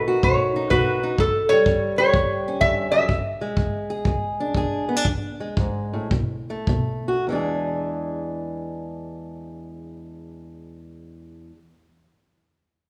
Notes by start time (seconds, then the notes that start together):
Already playing: B2 D#3 A3 D#4 B4
0.08 F#4
0.23 B2 C#5, kick
0.56 D#4
0.70 B2 F#4 B4, kick
1.03 D#4
1.18 A2 A4, kick
1.49 G3 C#5
1.66 A2, kick
1.98 G4 C#5
2.14 A2, kick
2.48 C#4
2.61 G2 E5, kick
2.92 F#2 E5
3.09 E2, kick
3.41 G#3
3.57 E2, kick
3.90 G#4
4.05 E2, kick
4.40 D4
4.54 E2 G#4, kick
4.89 B3
4.97 D4
5.05 E2, kick
5.40 G#3
5.57 G#2, kick
5.93 A2
6.11 B2, kick
6.50 A3
6.67 B2, kick
7.08 F#4
7.27 E2 E3 G#3
7.32 D4 G#4